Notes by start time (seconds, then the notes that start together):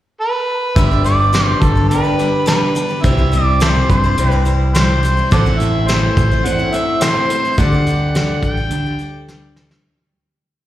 0.21 B4
0.75 G1 G2 D3 G3 B3 D4 G4 B4 E5, kick, closed hi-hat
0.91 D4 G4 B4
1.04 G3 D4 G4 B4 D5, closed hi-hat
1.33 G3 D4 G4 B4, snare, closed hi-hat
1.46 C5
1.62 G1 A4, kick, closed hi-hat
1.75 D4 G4 B4
1.88 G2 D3 G3 B3 D4 B4, closed hi-hat
1.93 G4
2.04 D4 G4 B4
2.19 G3 D4 G4 B4, closed hi-hat
2.46 G3 D4 G4 B4, snare, closed hi-hat
2.75 G3 D4 G4 B4, closed hi-hat
2.89 D4 G4 B4
3.02 C2 C3 E3 G3 C4 E4 G4 C5 E5, kick, closed hi-hat
3.17 G3 C4 E4 C5
3.32 G3 C4 E4 C5 D5, closed hi-hat
3.60 C3 E3 G3 C4 E4 A4 C5, snare, closed hi-hat
3.89 G2 C5, kick, closed hi-hat
4.04 G3 C4 E4 C5
4.17 C2 C3 G3 C4 E4 G4, closed hi-hat
4.28 B4 C5
4.32 G3 C4 E4
4.45 G3 C4 E4 C5, closed hi-hat
4.74 C3 E3 G3 C4 E4 C5, snare, closed hi-hat
5.03 G3 C4 E4 C5, closed hi-hat
5.17 G3 C4 E4 C5
5.31 A1 A2 E3 A3 C4 E4 A4 C5 D5 F#5, kick, closed hi-hat
5.45 A3 C4 E4 C5
5.60 A3 C4 E4 C5 E5, closed hi-hat
5.88 A2 E3 A3 C4 E4 C5, snare, closed hi-hat
6.17 A1, kick, closed hi-hat
6.32 A3 C4 E4 C5
6.43 A2 E3 C4 E4 A4 F#5, closed hi-hat
6.59 A3 C4 E4 C5
6.73 A3 C4 E4 C5 E5, closed hi-hat
7.01 A2 E3 A3 C4 E4 C5, snare, closed hi-hat
7.30 A3 C4 E4 C5, closed hi-hat
7.45 A3 C4 E4 C5
7.56 D2 D3 G3 D4 G4 A4 F#5, kick, closed hi-hat
7.72 D4 G4 A4
7.86 G3 D4 G4 A4, closed hi-hat
8.15 D3 G3 D4 G4 A4, snare, closed hi-hat
8.43 A1 G5, kick, closed hi-hat
8.57 D4 G4 A4
8.69 D2 D3 G3 D4 A4, closed hi-hat
8.86 D4 G4 A4
8.98 G3 D4 G4, closed hi-hat
9.03 A4
9.28 D3 G3 D4 G4 A4, snare
9.56 G3 D4 G4 A4, snare
9.69 D4 A4, snare